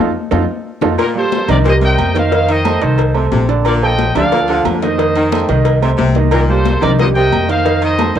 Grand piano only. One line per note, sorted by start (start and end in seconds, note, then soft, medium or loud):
0.31 0.42 D#4 loud
0.31 0.42 F4 medium
0.31 0.42 A4 medium
0.82 0.93 D#4 medium
0.82 0.92 F4 medium
0.82 0.93 A4 medium
1.15 1.42 G3 medium
1.15 1.43 A#3 medium
1.15 1.42 G4 medium
1.48 1.62 D#3 medium
1.48 1.62 D#4 loud
1.48 1.63 D#5 medium
1.65 1.79 G3 medium
1.65 1.79 G4 medium
1.65 1.79 A#4 medium
1.81 2.09 G3 medium
1.81 2.09 G4 medium
1.81 2.09 A#4 medium
2.14 2.28 D#3 medium
2.14 2.29 D#4 loud
2.14 2.29 D#5 medium
2.31 2.59 D#3 medium
2.31 2.59 D#4 medium
2.31 2.60 D#5 medium
2.65 2.79 A3 medium
2.65 2.79 A4 medium
2.65 2.79 C5 medium
2.82 3.09 D#3 medium
2.82 3.09 D#4 medium
2.82 3.10 D#5 medium
3.15 3.42 A3 medium
3.15 3.43 A4 medium
3.15 3.43 C5 medium
3.49 3.76 D3 medium
3.49 3.76 D4 medium
3.49 3.77 D5 medium
3.83 4.10 F3 medium
3.83 4.10 F4 medium
3.83 4.10 A4 medium
4.17 4.30 D3 medium
4.17 4.30 D4 loud
4.17 4.30 D5 medium
4.33 4.46 F3 medium
4.33 4.46 F4 medium
4.33 4.47 A4 medium
4.49 4.76 F3 medium
4.49 4.76 F4 medium
4.49 4.77 A4 medium
4.83 4.96 D#3 medium
4.83 4.96 D#4 medium
4.83 4.96 D#5 medium
4.98 5.26 D#3 medium
4.98 5.26 D#4 medium
4.98 5.26 D#5 medium
5.33 5.46 A3 medium
5.33 5.46 A4 medium
5.33 5.46 C5 medium
5.49 5.76 D#3 loud
5.49 5.76 D#4 medium
5.49 5.77 D#5 loud
5.82 6.09 A3 medium
5.82 6.09 A4 medium
5.82 6.10 C5 medium
6.16 6.43 D#3 medium
6.16 6.43 D#4 medium
6.16 6.43 D#5 medium
6.49 6.76 G3 medium
6.49 6.76 A#3 medium
6.49 6.76 G4 medium
6.82 6.96 D#3 medium
6.82 6.96 D#4 medium
6.82 6.96 D#5 medium
6.99 7.12 G3 medium
6.99 7.13 G4 medium
6.99 7.13 A#4 medium
7.15 7.43 G3 medium
7.15 7.43 G4 medium
7.15 7.43 A#4 medium
7.48 7.62 D#3 medium
7.48 7.62 D#4 medium
7.48 7.62 D#5 medium
7.65 7.92 D#3 medium
7.65 7.92 D#4 medium
7.65 7.93 D#5 medium
7.99 8.13 A3 medium
7.99 8.13 A4 medium
7.99 8.13 C5 medium
8.16 8.19 D#3 loud